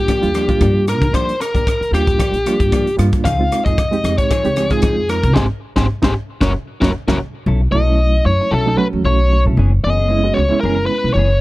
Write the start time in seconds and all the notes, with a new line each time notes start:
Already playing: G3 A#3 D4 F4 G4
0.08 F3 A#3 D4 G4, muted upright bass stroke, kick, cross-stick, closed hi-hat
0.20 D#2 G3 A#3 D4 F4, muted clean electric guitar stroke, closed hi-hat
0.34 F3 A#3 D4 G4, cross-stick, closed hi-hat
0.48 G3 A#3 D4 F4, muted clean electric guitar stroke, kick, closed hi-hat
0.61 G2 F3 A#3 D4 G4, kick, cross-stick, closed hi-hat
0.75 muted clean electric guitar stroke
0.87 A#4, muted clean electric guitar stroke, cross-stick, closed hi-hat
1.02 D#3, kick, closed hi-hat
1.13 D#3 F3 A#3 D4 G4 C5, kick, cross-stick, closed hi-hat
1.29 closed hi-hat
1.40 A#4, muted clean electric guitar stroke, cross-stick, closed hi-hat
1.54 D#2 A#3 D4 G4, kick, closed hi-hat
1.66 muted clean electric guitar stroke, kick, cross-stick, closed hi-hat
1.81 muted upright bass stroke, muted clean electric guitar stroke, closed hi-hat
1.91 D#2 G3 A#3 D4 F4 G4, cross-stick, closed hi-hat
2.07 muted clean electric guitar stroke, kick, closed hi-hat
2.19 F3 A#3 D4 G4, kick, cross-stick, closed hi-hat
2.33 A#1, muted clean electric guitar stroke, closed hi-hat
2.46 F3 G3 A#3 D4 F4 G4, cross-stick, closed hi-hat
2.60 G2, muted clean electric guitar stroke, kick, closed hi-hat
2.72 F3 A#3 D4 G4, kick, cross-stick, closed hi-hat
2.87 muted clean electric guitar stroke, closed hi-hat
2.97 G2 G3 A#3 D4 F4, muted clean electric guitar stroke, cross-stick, closed hi-hat
3.13 kick, closed hi-hat
3.25 C#2 F3 C4 D#4 G#4 F5, kick, cross-stick, closed hi-hat
3.39 G#3 C4 D#4 F4
3.52 muted clean electric guitar stroke, cross-stick, closed hi-hat
3.65 F2 C4 D#4 G#4 D#5, kick, closed hi-hat
3.78 muted clean electric guitar stroke, kick, cross-stick, closed hi-hat
3.92 G#3 C4 D#4 G4, muted clean electric guitar stroke, closed hi-hat
4.04 F2, cross-stick, closed hi-hat
4.18 C#5, muted clean electric guitar stroke, kick, closed hi-hat
4.30 F3 C4 D#4 G#4, muted upright bass stroke, kick, cross-stick, closed hi-hat
4.44 C#2 G#3 C4 D#4 G4, closed hi-hat
4.56 F3 C4 D#4 G#4, cross-stick, closed hi-hat
4.70 G#3 C4 D#4 F4 G#4, muted clean electric guitar stroke, kick, closed hi-hat
4.82 F2 F3 C4 D#4 G#4, kick, cross-stick, closed hi-hat
4.97 muted clean electric guitar stroke
5.09 A#4, muted clean electric guitar stroke, cross-stick, closed hi-hat
5.23 C#3, kick, closed hi-hat
5.34 G#1 G#3 C4 D#4 G4 G#4 C5, kick, snare
5.76 G#1 G#3 C4 D#4 G4 G#4 C5, kick, snare
6.02 G#1 G#3 C4 D#4 G4 G#4 C5, kick, snare
6.41 F#1 F#3 A#3 C#4 E4 F#4 A#4 C#5, kick, snare
6.81 F#1 F#3 A#3 C#4 E4 F#4 A#4 C#5, kick, snare
7.08 F#1 F#3 A#3 C#4 E4 F#4 A#4 C#5, kick, snare
7.46 B1 F#3 C#4 E4 A4
7.62 muted clean electric guitar stroke
7.71 B1 F#3 A3 C#4 E4 D#5
7.75 E4 A4
7.88 C#4 E4 A4
8.01 muted clean electric guitar stroke
8.25 F#2 C#5, muted clean electric guitar stroke
8.39 muted upright bass stroke, muted clean electric guitar stroke
8.51 B1 F#3 C#4 E4 A4
8.66 F#3 A3 C#4 D#4, muted clean electric guitar stroke
8.77 F#3 A3 C#4 F#4 B4, muted clean electric guitar stroke
8.93 E2
9.04 B1 F#3 C#4 E4 A4 C#5
9.19 muted clean electric guitar stroke
9.32 muted clean electric guitar stroke
9.45 B2 C#4 E4 A4
9.57 F#1 E3 B3 C#4 G#4
9.73 muted clean electric guitar stroke
9.84 F#1 E3 B3 C#4 G#4 D#5
9.99 B3 C#4 G#4
10.08 G#3 B3 C#4 E4, muted clean electric guitar stroke
10.24 G#3 B3 C#4 F#4
10.34 C#2 C#5
10.39 muted clean electric guitar stroke
10.49 G#3 B3 C#4 E4, muted upright bass stroke, muted clean electric guitar stroke
10.60 F#1 A#4
10.65 E3 B3 C#4 G#4
10.79 muted clean electric guitar stroke
10.86 B4
10.91 muted clean electric guitar stroke
11.04 B1
11.14 F#1 E3 B3 C#5
11.18 C#4 G#4
11.31 muted clean electric guitar stroke